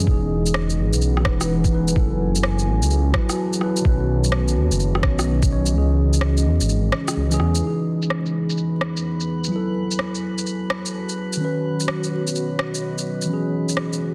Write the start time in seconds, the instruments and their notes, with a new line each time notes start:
Already playing: ambient pad C#4 G#4 D#5
0.03 tine electric piano E3, ambient pad E3
0.07 detuned saw bass E1, tine electric piano D#4 G#4, kick
0.17 ambient pad B4
0.27 ambient pad F#5
0.46 shaker
0.53 ambient pad G#5, cross-stick
0.70 shaker
0.78 detuned saw bass G#1
0.93 detuned saw bass B1, shaker
1.01 shaker
1.17 cross-stick
1.23 detuned saw bass E1, tine electric piano E3 D#4, kick, cross-stick
1.27 tine electric piano B4
1.41 cross-stick, shaker
1.64 kick, shaker
1.70 tine electric piano E3 D#4 B4
1.88 shaker
1.92 tine electric piano F#3 E4, ambient pad F#4
1.96 detuned saw bass F#1, tine electric piano A4, kick
2.19 ambient pad C#5
2.36 shaker
2.43 cross-stick
2.59 shaker
2.67 detuned saw bass A1, ambient pad A5
2.83 detuned saw bass C#2, shaker
2.90 shaker
3.12 tine electric piano F#3 E4, kick, cross-stick
3.16 tine electric piano B4
3.29 cross-stick, shaker
3.53 shaker
3.59 tine electric piano F#3 E4 B4, cross-stick
3.77 shaker
3.81 detuned saw bass B1, tine electric piano D#3 C#4, ambient pad B3, kick
3.89 tine electric piano B4
4.04 ambient pad D#5
4.24 shaker
4.32 cross-stick
4.48 shaker
4.56 detuned saw bass D#2
4.71 detuned saw bass F#1, shaker
4.80 shaker
4.95 cross-stick
5.01 detuned saw bass B1, tine electric piano D#3 C#4, kick, cross-stick
5.05 tine electric piano C#5
5.19 cross-stick, shaker
5.43 kick, shaker
5.49 tine electric piano D#3 C#4 C#5
5.66 tine electric piano E3, shaker
5.74 detuned saw bass C#2, tine electric piano C#4 G#4, ambient pad C#4
5.81 ambient pad G#4
6.14 shaker
6.21 cross-stick
6.37 shaker
6.45 detuned saw bass E2
6.61 detuned saw bass G#1, shaker
6.69 shaker
6.92 cross-stick
7.08 cross-stick, shaker
7.17 detuned saw bass C#2
7.30 tine electric piano E3 C#4, shaker
7.34 tine electric piano G#4
7.40 detuned saw bass E2, cross-stick
7.55 tine electric piano E3, shaker
7.63 ambient pad E3, tine electric piano D#4, synth texture B4 B5
7.67 tine electric piano G#4
7.83 ambient pad B4
8.02 ambient pad F#5, shaker
8.10 cross-stick
8.26 ambient pad G#5, shaker
8.50 shaker
8.57 shaker
8.81 cross-stick
8.97 shaker
9.20 shaker
9.44 tine electric piano F#3, shaker
9.52 tine electric piano E4, ambient pad F#4
9.56 tine electric piano A4
9.78 ambient pad C#5
9.91 shaker
9.99 cross-stick
10.06 ambient pad A5
10.15 shaker
10.38 shaker
10.46 shaker
10.70 cross-stick
10.86 shaker
11.09 shaker
11.33 tine electric piano D#3, shaker
11.41 ambient pad B3, tine electric piano C#4 B4
11.78 ambient pad D#5, shaker
11.88 cross-stick
12.04 shaker
12.27 shaker
12.35 shaker
12.59 cross-stick
12.75 shaker
12.98 shaker
13.22 tine electric piano E3, shaker
13.30 tine electric piano C#4 G#4, ambient pad C#4
13.42 ambient pad G#4
13.69 shaker
13.77 cross-stick
13.93 shaker